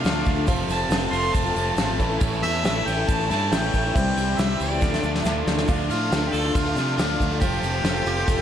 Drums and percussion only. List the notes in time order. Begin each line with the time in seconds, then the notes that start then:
0.04 snare, ride, shaker
0.25 kick, ride, shaker
0.36 shaker
0.47 kick, ride, shaker
0.58 shaker
0.69 ride, shaker
0.90 snare, ride, shaker
1.13 ride, shaker
1.34 kick, ride, shaker
1.46 shaker
1.56 ride, shaker
1.67 shaker
1.77 snare, ride, shaker
2.00 kick, ride, shaker
2.21 kick, ride, shaker
2.33 shaker
2.43 ride, shaker
2.64 snare, ride, shaker
2.87 ride, shaker
3.08 kick, ride, shaker
3.30 snare, ride, shaker
3.41 shaker
3.52 snare, ride, shaker
3.74 kick, ride, shaker
3.85 shaker
3.96 kick, ride, shaker
4.17 ride, shaker
4.28 shaker
4.38 snare, ride, shaker
4.60 ride, shaker
4.82 kick, snare, shaker
4.93 snare, shaker
5.03 shaker
5.15 snare, shaker
5.25 snare, shaker
5.47 snare, shaker
5.58 snare
5.68 kick, crash, shaker
5.80 shaker
5.90 ride, shaker
6.12 snare, ride, shaker
6.34 ride, shaker
6.55 kick, ride, shaker
6.67 shaker
6.76 snare, ride, shaker
6.88 shaker
6.99 snare, ride, shaker
7.20 kick, ride, shaker
7.32 shaker
7.41 kick, ride, shaker
7.52 shaker
7.63 ride, shaker
7.84 snare, ride, shaker
8.06 ride, shaker
8.27 kick, ride, shaker